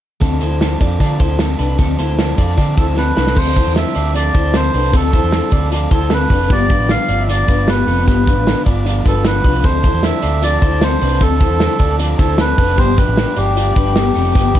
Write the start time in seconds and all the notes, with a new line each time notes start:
0.21 D2 D3 F3 C4 D4 A4, kick, closed hi-hat
0.40 D2 C4 D4 E4 A4 C5, closed hi-hat
0.59 F3 C4 D4 A4, snare, closed hi-hat
0.80 F2 C4 D4 F4 A4 D5, kick, closed hi-hat
0.99 D3 F3 C4 D4 F4 A4 D5, kick, closed hi-hat
1.19 D2 C4 D4 E4 A4 C5, kick, closed hi-hat
1.38 F3 C4 D4 A4, snare, closed hi-hat
1.58 C2 C4 D4 A4 B4, closed hi-hat
1.78 D2 D3 F3 C4 D4 A4, kick, closed hi-hat
1.98 D2 C4 D4 E4 A4 C5, closed hi-hat
2.17 F3 C4 D4 A4, snare, closed hi-hat
2.36 F2 C4 D4 F4 A4 D5, kick, closed hi-hat
2.56 D3 F3 C4 D4 F4 A4 D5, kick, closed hi-hat
2.76 D2 C4 D4 E4 A4 C5, kick, closed hi-hat
2.95 F3 C4 D4 A4 B4, snare
3.15 C2 C4 D4 A4 B4, snare
3.27 snare
3.34 D2 D3 F3 C4 D4 A4 C5, kick, crash
3.55 C4 D4 E4 A4 C5, kick, closed hi-hat
3.67 E2
3.75 D3 F3 C4 D4 A4 E5, snare, closed hi-hat
3.94 D2 C4 D4 F4 A4 D5, closed hi-hat
4.14 F3 C4 D4 F4 A4 D5, closed hi-hat
4.34 D2 C4 D4 E4 A4 C5, kick, closed hi-hat
4.54 D3 F3 C4 D4 A4 C5, snare, closed hi-hat
4.73 C2 C4 D4 A4 B4, open hi-hat
4.93 D2 D3 F3 C4 D4 A4, kick, closed hi-hat
5.13 C4 D4 E4 A4 C5, kick, closed hi-hat
5.23 E2
5.32 D3 F3 C4 D4 A4, snare, closed hi-hat
5.51 D2 C4 D4 F4 A4 D5, kick, closed hi-hat
5.71 F3 C4 D4 F4 A4 D5, closed hi-hat
5.91 D2 C4 D4 E4 A4 C5, kick, closed hi-hat
6.10 D3 F3 C4 D4 A4 B4, snare, closed hi-hat
6.29 F1 C4 D4 A4 B4, kick, open hi-hat
6.49 G1 G2 D3 F3 B3 F4 G4 D5, kick, closed hi-hat
6.69 F3 B3 D4 F4 B4, kick, closed hi-hat
6.79 A1
6.88 G2 D3 F3 B3 F4 F5, snare, closed hi-hat
7.08 G1 F3 B3 F4 D5, closed hi-hat
7.21 E5
7.27 D3 F3 B3 F4 D5, closed hi-hat
7.47 G1 F3 B3 D4 F4 B4, kick, closed hi-hat
7.67 G2 D3 F3 B3 F4 G4 B4, snare, closed hi-hat
7.87 F1 F3 B3 C4 F4 A4, open hi-hat
8.06 G1 G2 D3 F3 B3 F4 G4 B4, kick, closed hi-hat
8.26 F3 B3 D4 F4 B4, kick, closed hi-hat
8.36 A1
8.45 G2 D3 F3 B3 F4, snare, closed hi-hat
8.65 G1 F3 B3 F4 D5, kick, closed hi-hat
8.85 D3 F3 B3 F4 D5, closed hi-hat
9.04 G1 F3 B3 D4 F4 A4 B4, kick, closed hi-hat
9.24 G2 D3 F3 B3 D4 F4 A4 B4, snare, closed hi-hat
9.44 C2 F3 B3 D4 F4 B4, kick, open hi-hat
9.64 D2 D3 F3 C4 D4 A4 C5, kick, closed hi-hat
9.83 C4 D4 E4 A4 C5, kick, closed hi-hat
9.94 E2
10.03 D3 F3 C4 D4 A4 E5, snare, closed hi-hat
10.22 D2 C4 D4 F4 A4 D5, closed hi-hat
10.42 F3 C4 D4 F4 A4 D5, closed hi-hat
10.61 D2 C4 D4 E4 A4 C5, kick, closed hi-hat
10.81 D3 F3 C4 D4 A4 C5, snare, closed hi-hat
11.01 C2 C4 D4 A4 B4, open hi-hat
11.20 D2 D3 F3 C4 D4 A4, kick, closed hi-hat
11.40 C4 D4 E4 A4 C5, kick, closed hi-hat
11.50 E2
11.59 D3 F3 C4 D4 A4, snare, closed hi-hat
11.79 D2 C4 D4 F4 A4 D5, kick, closed hi-hat
11.99 F3 C4 D4 F4 A4 D5, closed hi-hat
12.18 D2 C4 D4 E4 A4 C5, kick, closed hi-hat
12.38 D3 F3 C4 D4 A4 B4, snare, closed hi-hat
12.58 F1 C4 D4 A4 B4, kick, open hi-hat
12.77 G1 G2 D3 F3 B3 D4 G4 C5, kick, closed hi-hat
12.97 F3 B3 D4 G4 B4, kick, closed hi-hat
13.08 A1
13.17 G2 D3 F3 B3 D4 G4, snare, closed hi-hat
13.36 G1 F3 B3 D4 F4 G4 D5, closed hi-hat
13.55 F3 B3 D4 F4 G4 D5, closed hi-hat
13.75 G1 F3 B3 D4 G4 B4, kick, closed hi-hat
13.95 G2 D3 F3 B3 D4 G4, snare, closed hi-hat
14.15 F1 F3 B3 C4 D4 G4 A4, open hi-hat
14.35 G1 G2 D3 F3 B3 D4 G4, kick, closed hi-hat
14.54 B3 D4 G4 B4, kick, closed hi-hat